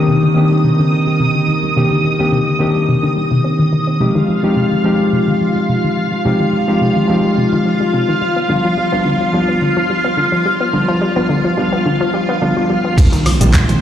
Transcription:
Already playing: D#3 A#3 C4 D4 G4 D#6
0.08 C3
0.23 D3
0.35 D#3 A#3 C4 D4 G4
0.51 G3
0.64 C3
0.79 D3
0.92 D#3
1.07 G3
1.20 C3
1.35 D3
1.48 D#3
1.63 G3
1.76 C3 D#3 A#3 C4 D4 G4
1.90 D3
2.04 D#3
2.19 D#3 G3 A#3 C4 D4 G4
2.32 C3
2.47 D3
2.59 D#3 A#3 C4 D4 G4
2.75 G3
2.89 C3
3.03 D3
3.17 G3
3.31 C3
3.44 C4
3.59 D#3
3.73 D#3
3.87 C4
4.00 C3 F3 G#3 C4 D#4 F4 G4 F5
4.15 D#3
4.29 F3
4.43 F3 G3 G#3 C4 D#4 G4
4.57 C3
4.72 D#3
4.84 F3 G#3 C4 D#4 G4
5.00 G3
5.13 C3
5.28 D#3
5.41 F3
5.56 G3
5.69 C3
5.84 D#3
5.97 F3
6.12 G3
6.24 C3 F3 G#3 C4 D#4 G4
6.40 D#3
6.53 F3
6.68 F3 G3 G#3 C4 D#4 G4
6.81 C3
6.96 D#3
7.08 F3 G#3 C4 D#4 G4
7.24 G3
7.38 C3
7.52 D#3
7.65 F3
7.80 G3
7.94 C3
8.08 D#3
8.21 G3
8.36 B3
8.48 D3 F3 G3 B3 D4 F4
8.64 F3
8.78 G3
8.92 F3 G3 B3 D4 F4
9.05 D3
9.20 F3
9.33 F3 G3 B3 D4 F4
9.48 B3
9.62 D3
9.77 F3
9.90 G3
10.04 B3
10.17 D3
10.32 F3
10.46 G3
10.61 B3
10.73 D3 F3 G3 B3 D4 F4
10.88 F3
11.01 G3
11.16 F3 G3 B3 D4 F4
11.29 D3
11.44 F3
11.57 F3 G3 B3 D4 F4
11.72 B3
11.86 D3
12.01 F3
12.14 G3
12.29 B3
12.41 D3 F3 G3 B3 D4 F4
12.56 F3 G3 B3 D4 F4
12.70 G3
12.85 B3
12.98 D#2 D3 D#3 C4 C5, kick, closed hi-hat, crash, impact, cabasa
13.13 D#3, closed hi-hat, cabasa
13.26 F3, open hi-hat, high woodblock
13.40 A#1 D#3 G3 A#3 D4 F4, closed hi-hat, high conga, cabasa
13.54 D3, kick, clap, closed hi-hat, cabasa
13.69 D#3, closed hi-hat, high conga, cabasa

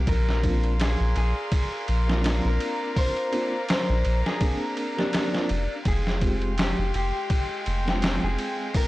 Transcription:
Already playing: F5
0.07 A#1 A#4 D5 C6, kick, ride
0.29 snare
0.43 A#3 C4 D4 F4, kick, ride
0.64 ride
0.80 G#4, snare, ride
1.00 A#1
1.16 A#1 G#4, ride
1.52 kick, ride
1.88 A#1, ride
2.07 A#3 C4 D4 F4, snare
2.24 snare, ride
2.45 A#1 A#4
2.60 ride
2.96 C5 A#5, kick, open hi-hat
3.17 ride
3.32 A#3 C4 D4 F4, ride
3.69 C5, snare, ride
3.89 A#1
4.05 A#1, ride
4.26 G#4, snare
4.40 A#3 C4 D4 G#4, kick, ride
4.77 ride
4.96 A#3 C4 D4 G4, snare
5.13 snare, ride
5.32 A#3 C4 D4 F4, snare
5.49 F1, ride
5.85 F1 G#3 G#4 G5 C6, kick, ride
6.07 snare
6.21 G#3 C4 F4 G4, kick, ride
6.42 ride
6.58 G4, snare, ride
6.78 F1
6.94 F1 G4, ride
7.30 kick, ride
7.66 F1, ride
7.85 G#3 C4 F4 G5, snare
8.02 snare, ride
8.23 F1 G#4
8.38 ride
8.74 A#4 D6, kick, open hi-hat

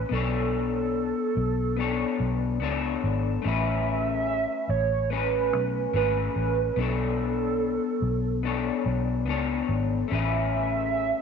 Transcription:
Already playing: C#4 G#4 B4
0.09 B1 B3 D4 A4
0.13 A4 C#5
1.37 B1
1.77 B3 D4 A4
1.81 C#5
2.20 B1
2.60 C#2 B3 D4 A4
2.64 C#5
3.04 G#1
3.42 A1 A3 C#4
3.46 G#4 B4 E5
4.69 A1 C#5
5.10 A3 C#4 G#4 B4
5.53 B1
5.93 G#1 A3 C#4 G#4 B4
6.36 A1
6.76 B1 B3 D4 A4
6.82 C#5
8.02 B1
8.43 B3 D4 A4 C#5
8.86 B1
9.26 C#2 B3 D4 A4
9.30 C#5
9.69 G#1
10.08 A1 A3 C#4
10.13 G#4 B4 E5

